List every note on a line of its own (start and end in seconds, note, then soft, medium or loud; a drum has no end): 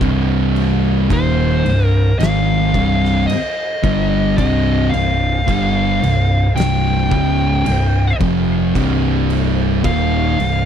0.00 1.07 C1 loud
0.00 1.08 C2 loud
0.00 1.09 G2 loud
0.00 1.09 C3 loud
0.00 kick loud
0.00 crash medium
0.56 crash soft
1.10 1.61 D#1 medium
1.10 1.63 D#2 medium
1.10 1.64 A#2 medium
1.10 1.64 D#3 loud
1.10 1.85 C5 medium
1.10 kick loud
1.10 crash medium
1.65 2.16 C1 medium
1.65 2.09 C2 medium
1.65 2.09 G2 medium
1.65 crash medium
1.85 2.17 A#4 medium
2.19 2.71 G#1 medium
2.19 2.73 G#2 medium
2.19 2.73 D#3 medium
2.19 2.74 G#3 loud
2.19 3.25 F5 medium
2.19 crash medium
2.23 snare loud
2.74 3.25 C1 medium
2.74 3.27 C2 medium
2.74 3.28 G2 medium
2.74 3.28 C3 medium
2.74 kick medium
2.74 crash medium
3.05 snare soft
3.27 4.36 D#5 medium
3.27 crash medium
3.83 4.35 G1 loud
3.83 4.37 G2 medium
3.83 4.37 D3 medium
3.83 4.37 G3 medium
3.83 kick loud
3.83 crash medium
4.38 4.89 C1 medium
4.38 4.91 C2 loud
4.38 4.92 G2 medium
4.38 4.92 C3 loud
4.38 4.90 D#5 loud
4.38 kick loud
4.38 crash medium
4.91 5.44 C1 medium
4.91 5.37 C2 medium
4.91 5.37 G2 medium
4.91 6.55 F5 loud
4.91 crash medium
5.47 5.99 G1 medium
5.47 6.00 G2 medium
5.47 6.01 D3 medium
5.47 6.01 G3 loud
5.47 kick loud
5.47 crash medium
6.01 6.53 C1 medium
6.01 6.46 C2 medium
6.01 6.46 G2 medium
6.01 crash medium
6.56 7.08 C1 medium
6.56 7.10 C2 medium
6.56 7.10 G2 medium
6.56 7.10 C3 medium
6.56 8.16 G5 loud
6.56 crash medium
6.60 snare loud
7.11 7.62 C#1 medium
7.11 7.64 C#2 loud
7.11 7.64 G#2 medium
7.11 7.65 C#3 medium
7.11 kick loud
7.11 crash soft
7.66 8.18 C1 medium
7.66 8.10 C2 medium
7.66 8.10 G2 medium
7.66 crash medium
8.20 8.72 F1 loud
8.20 8.73 F2 medium
8.20 8.74 C3 medium
8.20 8.74 F3 medium
8.20 kick loud
8.20 crash medium
8.74 9.81 C1 loud
8.74 9.83 C2 medium
8.74 9.83 G2 loud
8.74 9.83 C3 loud
8.74 kick loud
8.74 crash medium
9.30 crash medium
9.83 10.35 D#1 medium
9.83 10.37 D#2 loud
9.83 10.37 A#2 medium
9.83 10.37 D#3 loud
9.83 10.65 F5 loud
9.83 kick loud
9.83 crash medium
10.38 10.65 C1 medium
10.38 10.65 C2 medium
10.38 10.65 G2 medium
10.38 crash medium